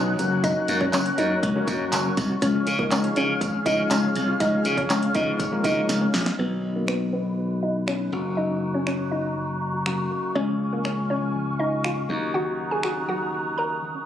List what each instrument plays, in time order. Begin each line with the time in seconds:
Already playing: slap bass B1, grand piano F#3 B3 D#4, synth pluck C#4 C#5, flute section B4 F#5 D#6 F#6
0.07 synth arpeggio sound D#4
0.19 slap bass F#1, grand piano F#3 A#3 C#4, flute section A#4 C#5 C#6, closed hi-hat, tambourine
0.31 synth arpeggio sound F#4
0.44 synth arpeggio sound F#3, synth pluck D#4 D#5, kick, closed hi-hat, tambourine
0.56 synth arpeggio sound C#4
0.68 slap bass F#2, synth arpeggio sound A#3, closed hi-hat, tambourine
0.81 synth pluck C#4 C#5, kick
0.93 slap bass F#1, synth arpeggio sound F#3, synth pluck C#4 C#5, clap, closed hi-hat, tambourine
1.06 synth arpeggio sound C#4, closed hi-hat
1.18 slap bass F#2, grand piano F#3 A#3 C#4, synth pluck D#4 D#5, closed hi-hat, tambourine
1.43 slap bass C#2, synth arpeggio sound F#3, kick, closed hi-hat
1.55 grand piano F#3 A#3 C#4, synth arpeggio sound C#4
1.68 slap bass F#2, synth arpeggio sound A#3, kick, closed hi-hat, tambourine
1.92 slap bass F#1, clap, closed hi-hat, tambourine
2.05 synth arpeggio sound C#4
2.17 slap bass C2, kick, closed hi-hat, tambourine
2.30 synth arpeggio sound F#4
2.42 slap bass C#2, grand piano F3 G#3 C#4, synth arpeggio sound F3, synth pluck C#4 C#5, flute section G#4 C#5 F5 F6, kick, closed hi-hat, tambourine
2.54 synth arpeggio sound C#4
2.67 slap bass C#3, synth arpeggio sound G#3, closed hi-hat, tambourine
2.79 grand piano F3 G#3 D#4, synth pluck A#3 A#4, kick
2.91 slap bass C#2, synth arpeggio sound F3, synth pluck C#4 C#5, clap, closed hi-hat, tambourine
3.04 synth arpeggio sound C#4, closed hi-hat
3.16 slap bass C#3, synth pluck C#4 C#5, closed hi-hat, tambourine
3.41 slap bass G#1, synth arpeggio sound F3, kick, closed hi-hat, tambourine
3.54 synth arpeggio sound C#4
3.66 slap bass C#3, grand piano F3 G#3 C#4, synth arpeggio sound G#3, synth pluck D#4 D#5, kick, closed hi-hat, tambourine
3.90 slap bass C#2, synth pluck C#4 C#5, clap, closed hi-hat, tambourine
4.03 synth arpeggio sound C#4
4.15 slap bass C2, closed hi-hat, tambourine
4.28 synth arpeggio sound F4
4.40 slap bass C#2, grand piano F3 G#3 C#4, synth arpeggio sound F3, synth pluck D#4 D#5, flute section C#6, kick, closed hi-hat, tambourine
4.53 synth arpeggio sound C#4
4.65 slap bass C#3, synth arpeggio sound G#3, closed hi-hat, tambourine
4.77 synth pluck C#4 C#5, kick, closed hi-hat
4.90 slap bass C#2, synth arpeggio sound F3, synth pluck C#4 C#5, clap, closed hi-hat, tambourine
5.02 synth arpeggio sound C#4, closed hi-hat
5.14 slap bass C#3, grand piano F3 G#3 B3, synth pluck D#4 D#5, kick, closed hi-hat, tambourine
5.39 slap bass G#1, synth arpeggio sound F3, kick, closed hi-hat, tambourine
5.52 grand piano F3 G#3 A#3, synth arpeggio sound C#4
5.64 slap bass C#3, synth arpeggio sound G#3, synth pluck D#4 D#5, kick, closed hi-hat, tambourine
5.89 slap bass C#2, snare, closed hi-hat, tambourine
6.01 synth arpeggio sound C#4
6.14 slap bass A#1, snare, open hi-hat, tambourine
6.26 synth arpeggio sound F4, snare
6.38 slap bass B1, grand piano D#3 F#3 B3 F#4, synth arpeggio sound F#3, synth pluck B3 B4, flute section D#5 B5 F#6
6.51 synth arpeggio sound D#4
6.76 synth pluck A#3 A#4, synth arpeggio sound F#4
6.88 synth pluck B3 B4, finger snap
7.01 synth arpeggio sound D#4
7.13 synth arpeggio sound B3, synth pluck B3 B4
7.38 synth arpeggio sound F#3
7.63 synth pluck D#4 D#5
7.75 synth arpeggio sound F#4
7.87 synth arpeggio sound F#3, synth pluck C#4 C#5, finger snap
8.00 synth arpeggio sound D#4
8.12 slap bass F#1, grand piano C#3 F#3 A#3 F#4, synth arpeggio sound A#3, flute section A#5 C#6
8.37 synth arpeggio sound F#3, synth pluck D#4 D#5
8.49 synth arpeggio sound C#4
8.74 synth pluck C#4 C#5, synth arpeggio sound F#4
8.87 synth pluck C#4 C#5, finger snap
8.99 synth arpeggio sound C#4
9.11 synth arpeggio sound A#3, synth pluck D#4 D#5
9.36 synth arpeggio sound F#3
9.73 synth arpeggio sound F#4
9.86 grand piano C#3 F#3 A#3 F#4, synth arpeggio sound F#3, finger snap
9.98 synth arpeggio sound C#4
10.11 synth arpeggio sound A#3
10.35 slap bass C#2, grand piano C#3 F3 G#3 F4, synth arpeggio sound F3, synth pluck C#4 C#5, flute section G#5 F6
10.48 synth arpeggio sound C#4
10.72 synth pluck A#3 A#4, synth arpeggio sound F4
10.85 synth pluck C#4 C#5, finger snap
10.97 synth arpeggio sound C#4
11.10 synth arpeggio sound G#3, synth pluck C#4 C#5
11.35 synth arpeggio sound F3
11.59 synth pluck D#4 D#5
11.72 synth arpeggio sound F4
11.84 synth arpeggio sound F3, synth pluck F4 F5, finger snap
11.97 synth arpeggio sound C#4
12.09 slap bass D#2, grand piano C#3 F#3 A#3 D#4, synth arpeggio sound F#3, flute section A#5 D#6 F#6
12.34 synth arpeggio sound D#3, synth pluck F#4 F#5
12.46 synth arpeggio sound C#4
12.71 synth arpeggio sound D#4, synth pluck G#4 G#5
12.83 synth pluck F#4 F#5, finger snap
12.96 synth arpeggio sound C#4
13.08 synth arpeggio sound F#3, synth pluck F#4 F#5
13.33 synth arpeggio sound D#3
13.58 synth pluck A#4 A#5
13.70 synth arpeggio sound D#4
13.82 synth arpeggio sound D#3
13.95 synth arpeggio sound C#4